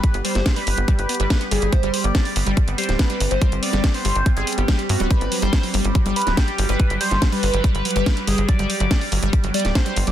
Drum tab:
HH |x-x-o-x-x-o-o-x-x-x-oxx-x-x-o-x-|x-x-o-x-x-o-o-x-x-x-oxx-x-x-o-x-|x-x-o-x-x-o-o-x-x-x-oxx-x-x-o-x-|x-x-o-x-x-o-o-x-x-x-oxx-x-x-o-x-|
SD |------o-o---------------o-------|--------o-------------o-o-------|------o-o---------------o-------|--------o-------------o-o-------|
BD |o-------o-------o-------o-------|o-------o-------o-------o-------|o-------o-------o-------o-------|o-------o-------o-------o-------|

HH |x-x-o-x-x-o-o-x-x-x-oxx-x-x-o-x-|x-x-o-x-x-o-o-x-x-x-oxx-x-x-o-x-|
SD |------o-o---------------o-------|--------o-------------o-o-------|
BD |o-------o-------o-------o-------|o-------o-------o-------o-------|